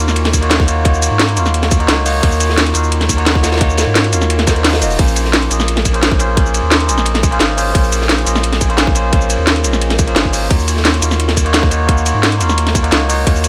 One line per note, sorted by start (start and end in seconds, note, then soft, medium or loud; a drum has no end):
0.00 1.10 D#2 loud
0.00 0.41 A#3 medium
0.00 0.42 D#4 medium
0.00 0.42 F4 medium
0.00 0.43 F#4 medium
0.00 0.44 C#5 medium
0.00 0.42 F5 medium
0.08 snare soft
0.08 shaker soft
0.16 closed hi-hat medium
0.16 ride loud
0.25 snare medium
0.25 snare soft
0.25 closed hi-hat soft
0.33 kick medium
0.33 closed hi-hat medium
0.33 ride medium
0.33 ride bell medium
0.33 shaker medium
0.41 0.65 A#3 loud
0.41 0.66 D#4 medium
0.41 0.66 F4 medium
0.41 0.66 F#4 medium
0.41 0.67 C#5 loud
0.41 closed hi-hat soft
0.50 snare loud
0.50 closed hi-hat medium
0.50 ride medium
0.60 kick loud
0.60 snare soft
0.67 0.82 A#3 medium
0.67 0.83 D#4 medium
0.67 0.83 F4 medium
0.67 0.84 F#4 medium
0.67 0.84 C#5 loud
0.67 closed hi-hat medium
0.67 ride medium
0.67 ride bell medium
0.67 shaker medium
0.83 1.34 A#3 medium
0.83 1.34 D#4 medium
0.83 1.35 F4 medium
0.83 1.36 F#4 medium
0.83 kick loud
0.83 closed hi-hat medium
0.83 ride medium
0.88 1.36 C#5 medium
0.94 shaker soft
1.02 closed hi-hat medium
1.02 ride medium
1.02 ride bell medium
1.02 shaker medium
1.11 1.38 G#2 medium
1.20 snare loud
1.20 closed hi-hat medium
1.20 ride medium
1.28 closed hi-hat soft
1.28 ride soft
1.35 1.87 D#2 loud
1.35 1.78 A#3 medium
1.35 1.78 D#4 medium
1.35 1.79 F4 medium
1.35 1.79 F#4 medium
1.35 closed hi-hat medium
1.35 ride medium
1.35 ride bell medium
1.35 shaker medium
1.39 1.80 F5 medium
1.46 snare soft
1.46 shaker soft
1.54 closed hi-hat medium
1.54 ride medium
1.62 snare medium
1.62 snare soft
1.62 closed hi-hat soft
1.71 kick loud
1.71 closed hi-hat medium
1.71 ride medium
1.71 ride bell medium
1.71 shaker medium
1.79 2.03 A#3 loud
1.79 2.04 D#4 medium
1.79 2.04 F4 medium
1.79 2.04 F#4 medium
1.79 2.05 C#5 loud
1.79 closed hi-hat soft
1.88 2.22 C#2 medium
1.88 snare loud
1.88 closed hi-hat medium
1.88 ride medium
2.05 2.19 A#3 medium
2.05 2.21 D#4 medium
2.05 2.21 F4 medium
2.05 2.21 F#4 medium
2.05 2.22 C#5 loud
2.05 closed hi-hat medium
2.05 open hi-hat medium
2.05 ride bell medium
2.05 shaker medium
2.21 2.74 D#2 loud
2.21 2.71 A#3 medium
2.21 2.72 D#4 medium
2.21 2.73 F4 medium
2.21 2.73 F#4 medium
2.21 kick loud
2.21 closed hi-hat medium
2.21 ride medium
2.25 2.74 C#5 medium
2.32 shaker soft
2.40 closed hi-hat medium
2.40 ride medium
2.40 ride bell medium
2.40 shaker medium
2.49 snare medium
2.58 snare loud
2.58 closed hi-hat loud
2.58 ride medium
2.66 closed hi-hat soft
2.73 3.86 D#2 loud
2.73 3.15 A#3 medium
2.73 3.16 D#4 medium
2.73 3.16 F4 medium
2.73 3.17 F#4 medium
2.73 closed hi-hat medium
2.73 ride medium
2.73 ride bell medium
2.73 shaker medium
2.77 3.18 F5 medium
2.84 shaker soft
2.92 closed hi-hat loud
2.92 ride medium
3.01 snare medium
3.01 snare soft
3.01 closed hi-hat soft
3.09 kick medium
3.09 closed hi-hat medium
3.09 ride medium
3.09 ride bell medium
3.09 shaker medium
3.17 3.41 A#3 loud
3.17 3.42 D#4 medium
3.17 3.42 F4 medium
3.17 3.42 F#4 medium
3.17 3.42 C#5 loud
3.17 closed hi-hat soft
3.26 snare loud
3.26 closed hi-hat loud
3.26 ride medium
3.35 kick loud
3.35 snare soft
3.43 3.57 A#3 medium
3.43 3.59 D#4 medium
3.43 3.59 F4 medium
3.43 3.59 F#4 medium
3.43 3.60 C#5 loud
3.43 snare loud
3.43 closed hi-hat medium
3.43 ride medium
3.43 ride bell medium
3.43 shaker medium
3.52 snare medium
3.52 ride medium
3.56 4.10 A#3 medium
3.56 4.10 D#4 medium
3.56 snare medium
3.56 ride medium
3.61 4.11 F4 medium
3.61 4.11 F#4 medium
3.61 4.12 C#5 loud
3.61 kick loud
3.61 closed hi-hat loud
3.61 ride medium
3.70 shaker soft
3.77 snare loud
3.77 closed hi-hat medium
3.77 ride medium
3.77 ride bell medium
3.77 shaker medium
3.87 4.14 G#2 medium
3.95 snare loud
3.95 closed hi-hat loud
3.95 ride medium
4.04 closed hi-hat soft
4.04 ride soft
4.12 4.83 D#2 loud
4.12 4.45 A#3 medium
4.12 4.45 D#4 medium
4.12 4.46 F4 medium
4.12 4.46 F#4 medium
4.12 4.46 F5 medium
4.12 closed hi-hat medium
4.12 ride medium
4.12 ride bell medium
4.12 shaker medium
4.21 snare soft
4.21 shaker soft
4.30 closed hi-hat loud
4.30 ride medium
4.38 snare medium
4.38 snare soft
4.38 closed hi-hat soft
4.46 4.54 A#3 loud
4.46 4.54 D#4 medium
4.46 4.54 F4 medium
4.46 4.55 F#4 medium
4.46 4.55 C5 loud
4.46 kick loud
4.46 snare loud
4.46 closed hi-hat medium
4.46 ride medium
4.46 ride bell medium
4.46 shaker medium
4.56 closed hi-hat soft
4.64 snare loud
4.64 closed hi-hat loud
4.64 open hi-hat medium
4.73 snare loud
4.73 ride medium
4.81 4.97 D#1 loud
4.81 4.96 A#3 medium
4.81 4.97 D#4 medium
4.81 4.97 F4 medium
4.81 4.97 F#4 medium
4.81 4.98 D#5 medium
4.81 closed hi-hat medium
4.81 ride bell medium
4.81 shaker medium
4.90 open hi-hat medium
4.90 shaker soft
4.97 5.49 A#1 loud
4.97 5.47 A#3 medium
4.97 5.48 C#4 medium
4.97 5.49 F4 medium
4.97 5.49 G#4 medium
4.97 kick loud
4.97 closed hi-hat loud
4.97 ride medium
5.02 5.50 C5 medium
5.08 shaker soft
5.16 closed hi-hat medium
5.16 ride medium
5.16 ride bell medium
5.16 shaker medium
5.25 snare medium
5.33 snare loud
5.33 closed hi-hat loud
5.33 ride medium
5.42 closed hi-hat soft
5.49 6.62 A#1 loud
5.49 5.91 A#3 medium
5.49 5.92 C#4 medium
5.49 5.92 F4 medium
5.49 5.93 G#4 medium
5.49 closed hi-hat medium
5.49 ride medium
5.49 ride bell medium
5.49 shaker medium
5.53 5.94 D#5 medium
5.60 snare soft
5.60 shaker soft
5.68 closed hi-hat loud
5.68 ride medium
5.76 snare medium
5.76 snare soft
5.76 closed hi-hat soft
5.85 kick medium
5.85 closed hi-hat medium
5.85 ride medium
5.85 ride bell medium
5.85 shaker medium
5.93 6.17 A#3 loud
5.93 6.18 C#4 medium
5.93 6.18 F4 medium
5.93 6.18 G#4 medium
5.93 6.18 C5 loud
5.93 closed hi-hat soft
6.02 snare loud
6.02 closed hi-hat loud
6.02 ride medium
6.11 kick loud
6.11 snare soft
6.19 6.34 A#3 medium
6.19 6.35 C#4 medium
6.19 6.35 F4 medium
6.19 6.35 G#4 medium
6.19 6.36 C5 loud
6.19 closed hi-hat medium
6.19 ride medium
6.19 ride bell medium
6.19 shaker medium
6.35 6.85 A#3 medium
6.35 6.86 C#4 medium
6.35 6.87 F4 medium
6.35 6.88 G#4 medium
6.35 kick loud
6.35 closed hi-hat medium
6.35 ride medium
6.40 6.88 C5 medium
6.46 shaker soft
6.54 closed hi-hat medium
6.54 ride medium
6.54 ride bell medium
6.54 shaker medium
6.63 6.90 D#2 medium
6.71 snare loud
6.71 closed hi-hat loud
6.71 ride medium
6.80 closed hi-hat soft
6.80 ride soft
6.86 7.39 A#1 loud
6.86 7.29 A#3 medium
6.86 7.30 C#4 medium
6.86 7.30 F4 medium
6.86 7.31 G#4 medium
6.86 closed hi-hat medium
6.86 ride medium
6.86 ride bell medium
6.86 shaker medium
6.91 7.32 D#5 medium
6.98 snare soft
6.98 shaker soft
7.05 closed hi-hat loud
7.05 ride medium
7.14 snare medium
7.14 snare soft
7.14 closed hi-hat soft
7.23 kick loud
7.23 closed hi-hat medium
7.23 ride medium
7.23 ride bell medium
7.23 shaker medium
7.31 7.55 A#3 loud
7.31 7.55 C#4 medium
7.31 7.56 F4 medium
7.31 7.56 G#4 medium
7.31 7.56 C5 loud
7.31 closed hi-hat soft
7.40 7.74 G#1 medium
7.40 snare loud
7.40 closed hi-hat loud
7.40 ride loud
7.56 7.71 A#3 medium
7.56 7.72 C#4 medium
7.56 7.73 F4 medium
7.56 7.73 G#4 medium
7.56 7.73 C5 loud
7.56 closed hi-hat medium
7.56 open hi-hat medium
7.56 ride bell medium
7.56 shaker medium
7.72 8.25 A#1 loud
7.72 8.23 A#3 medium
7.72 8.24 C#4 medium
7.72 8.25 F4 medium
7.72 8.25 G#4 medium
7.72 kick loud
7.72 closed hi-hat medium
7.72 ride medium
7.77 8.26 C5 medium
7.84 shaker soft
7.92 closed hi-hat medium
7.92 ride medium
7.92 ride bell medium
7.92 shaker medium
8.02 snare medium
8.09 snare loud
8.09 closed hi-hat medium
8.09 ride medium
8.18 closed hi-hat soft
8.24 9.38 A#1 loud
8.24 8.67 A#3 medium
8.24 8.68 C#4 medium
8.24 8.68 F4 medium
8.24 8.69 G#4 medium
8.24 closed hi-hat medium
8.24 ride medium
8.24 ride bell medium
8.24 shaker medium
8.29 8.69 D#5 medium
8.36 snare soft
8.36 shaker soft
8.43 closed hi-hat medium
8.43 ride medium
8.53 snare medium
8.53 snare soft
8.53 closed hi-hat soft
8.61 kick medium
8.61 closed hi-hat medium
8.61 ride medium
8.61 ride bell medium
8.61 shaker medium
8.69 8.93 A#3 loud
8.69 8.93 C#4 medium
8.69 8.94 F4 medium
8.69 8.94 G#4 medium
8.69 8.94 C5 loud
8.69 closed hi-hat soft
8.77 snare loud
8.77 closed hi-hat medium
8.77 ride loud
8.87 kick loud
8.87 snare soft
8.95 9.10 A#3 medium
8.95 9.11 C#4 medium
8.95 9.11 F4 medium
8.95 9.11 G#4 medium
8.95 9.11 C5 loud
8.95 closed hi-hat medium
8.95 ride medium
8.95 ride bell medium
8.95 shaker medium
9.11 9.61 A#3 medium
9.11 9.62 C#4 medium
9.11 9.63 F4 medium
9.11 9.63 G#4 medium
9.11 kick loud
9.11 closed hi-hat medium
9.11 ride medium
9.15 9.64 C5 medium
9.21 shaker soft
9.30 closed hi-hat medium
9.30 ride medium
9.30 ride bell medium
9.30 shaker medium
9.39 9.66 D#2 medium
9.47 snare loud
9.47 closed hi-hat medium
9.47 ride loud
9.56 closed hi-hat soft
9.56 ride soft
9.62 10.15 A#1 loud
9.62 10.05 A#3 medium
9.62 10.06 C#4 medium
9.62 10.06 F4 medium
9.62 10.07 G#4 medium
9.62 closed hi-hat medium
9.62 ride medium
9.62 ride bell medium
9.62 shaker medium
9.67 10.07 D#5 medium
9.73 snare soft
9.73 shaker soft
9.82 closed hi-hat medium
9.82 ride medium
9.90 snare medium
9.90 snare soft
9.90 closed hi-hat soft
9.99 kick loud
9.99 closed hi-hat medium
9.99 ride medium
9.99 ride bell medium
9.99 shaker medium
10.07 10.31 A#3 loud
10.07 10.31 C#4 medium
10.07 10.32 F4 medium
10.07 10.32 G#4 medium
10.07 10.32 C5 loud
10.07 closed hi-hat soft
10.16 10.49 G#1 medium
10.16 snare loud
10.16 closed hi-hat medium
10.16 ride medium
10.25 kick medium
10.32 10.47 A#3 medium
10.32 10.48 C#4 medium
10.32 10.49 F4 medium
10.32 10.49 G#4 medium
10.32 10.49 C5 loud
10.32 closed hi-hat medium
10.32 open hi-hat medium
10.32 ride bell medium
10.32 shaker medium
10.49 11.01 D#2 loud
10.49 10.99 A#3 medium
10.49 11.00 D#4 medium
10.49 11.01 F4 medium
10.49 11.01 F#4 medium
10.49 kick loud
10.49 closed hi-hat medium
10.49 ride medium
10.59 shaker soft
10.68 closed hi-hat medium
10.68 ride medium
10.68 ride bell medium
10.68 shaker medium
10.77 snare medium
10.85 snare loud
10.85 closed hi-hat medium
10.85 ride medium
10.94 closed hi-hat soft
11.00 12.13 D#2 loud
11.00 11.43 A#3 medium
11.00 11.44 D#4 medium
11.00 11.44 F4 medium
11.00 11.45 F#4 medium
11.00 closed hi-hat medium
11.00 ride medium
11.00 ride bell medium
11.00 shaker medium
11.05 11.45 F5 medium
11.11 snare soft
11.11 shaker soft
11.19 closed hi-hat medium
11.19 ride medium
11.28 snare medium
11.28 snare soft
11.28 closed hi-hat soft
11.37 kick medium
11.37 closed hi-hat medium
11.37 ride medium
11.37 ride bell medium
11.37 shaker medium
11.44 11.69 A#3 loud
11.44 11.69 D#4 medium
11.44 11.69 F4 medium
11.44 11.70 F#4 medium
11.44 11.70 C#5 loud
11.44 closed hi-hat soft
11.53 snare loud
11.53 closed hi-hat medium
11.53 ride medium
11.63 kick loud
11.63 snare soft
11.70 11.85 A#3 medium
11.70 11.86 D#4 medium
11.70 11.87 F4 medium
11.70 11.87 F#4 medium
11.70 11.87 C#5 loud
11.70 closed hi-hat medium
11.70 ride medium
11.70 ride bell medium
11.70 shaker medium
11.86 12.37 A#3 medium
11.86 12.38 D#4 medium
11.86 12.38 F4 medium
11.86 12.39 F#4 medium
11.86 kick loud
11.86 closed hi-hat medium
11.86 ride loud
11.91 12.40 C#5 medium
11.98 shaker soft
12.06 closed hi-hat medium
12.06 ride medium
12.06 ride bell medium
12.06 shaker medium
12.15 12.42 G#2 medium
12.23 snare loud
12.23 closed hi-hat loud
12.23 ride medium
12.32 closed hi-hat soft
12.32 ride soft
12.38 12.91 D#2 loud
12.38 12.81 A#3 medium
12.38 12.81 D#4 medium
12.38 12.82 F4 medium
12.38 12.83 F#4 medium
12.38 closed hi-hat medium
12.38 ride medium
12.38 ride bell medium
12.38 shaker medium
12.43 12.83 F5 medium
12.49 snare soft
12.49 shaker soft
12.58 closed hi-hat medium
12.58 ride medium
12.67 snare medium
12.67 snare soft
12.67 closed hi-hat soft
12.75 kick loud
12.75 closed hi-hat medium
12.75 ride medium
12.75 ride bell medium
12.75 shaker medium
12.83 13.07 A#3 loud
12.83 13.07 D#4 medium
12.83 13.07 F4 loud
12.83 13.08 F#4 medium
12.83 13.08 C#5 loud
12.83 closed hi-hat soft
12.91 13.25 C#2 medium
12.91 snare loud
12.91 closed hi-hat loud
12.91 ride medium
13.08 13.23 A#3 medium
13.08 13.25 D#4 medium
13.08 13.25 F4 medium
13.08 13.25 F#4 medium
13.08 13.25 C#5 loud
13.08 closed hi-hat medium
13.08 open hi-hat medium
13.08 ride bell medium
13.08 shaker medium
13.24 13.48 D#2 loud
13.24 13.48 A#3 medium
13.24 13.48 D#4 medium
13.24 13.48 F4 medium
13.24 13.48 F#4 medium
13.24 kick loud
13.24 closed hi-hat medium
13.24 ride medium
13.29 13.48 C#5 medium
13.36 shaker soft
13.44 closed hi-hat medium
13.44 ride medium
13.44 ride bell medium
13.44 shaker medium